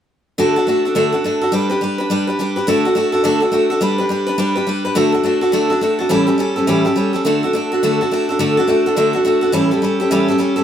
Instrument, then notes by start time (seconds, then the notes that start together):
steel-string acoustic guitar
0.38 D3 A3 D4 F#4 A4
0.56 D4 F#4 A4
0.67 A3 D4 F#4 A4
0.85 D4 F#4 A4
0.95 D3 A3 D4 F#4 A4
1.12 D4 F#4 A4
1.24 A3 D4 F#4 A4
1.41 D4 F#4 A4
1.52 G3 D4 G4 B4
1.70 D4 G4 B4
1.81 G3 D4 G4 B4
1.98 D4 G4 B4
2.10 G3 D4 G4 B4
2.27 D4 G4 B4
2.39 G3 D4 G4 B4
2.56 D4 G4 B4
2.67 D3 A3 D4 F#4 A4
2.85 D4 F#4 A4
2.95 A3 D4 F#4 A4
3.12 D4 F#4 A4
3.24 D3 A3 D4 F#4 A4
3.40 D4 F#4 A4
3.52 A3 D4 F#4 A4
3.70 D4 F#4 A4
3.81 G3 D4 G4 B4
3.98 D4 G4 B4
4.09 G3 D4 G4 B4
4.27 D4 G4 B4
4.38 G3 D4 G4 B4
4.55 D4 G4 B4
4.67 G3 D4 G4 B4
4.85 D4 G4 B4
4.95 D3 A3 D4 F#4 A4
5.12 D4 F#4 A4
5.23 A3 D4 F#4 A4
5.41 D4 F#4 A4
5.52 D3 A3 D4 F#4 A4
5.70 D4 F#4 A4
5.81 A3 D4 F#4 A4
5.99 D4 F#4 A4
6.09 A2 E3 G3 C#4 G4 A4
6.27 G3 C#4 G4 A4
6.38 G3 C#4 G4 A4
6.56 G3 C#4 G4 A4
6.67 A2 E3 G3 C#4 G4 A4
6.85 G3 C#4 G4 A4
6.96 G3 C#4 G4 A4
7.13 G3 C#4 G4 A4
7.25 D3 A3 D4 F#4 A4
7.43 D4 F#4 A4
7.53 A3 D4 F#4 A4
7.72 D4 F#4 A4
7.83 D3 A3 D4 F#4 A4
8.01 D4 F#4 A4
8.11 A3 D4 F#4 A4
8.29 D4 F#4 A4
8.39 D3 A3 D4 F#4 A4
8.57 D4 F#4 A4
8.67 A3 D4 F#4 A4
8.86 D4 F#4 A4
8.96 D3 A3 D4 F#4 A4
9.13 D4 F#4 A4
9.25 A3 D4 F#4 A4
9.41 D4 F#4 A4
9.52 A2 E3 G3 C#4 G4 A4
9.71 G3 C#4 G4 A4
9.82 G3 C#4 G4 A4
10.00 G3 C#4 G4 A4
10.11 A2 E3 G3 C#4 G4 A4
10.28 G3 C#4 G4 A4
10.38 G3 C#4 G4 A4
10.56 G3 C#4 G4 A4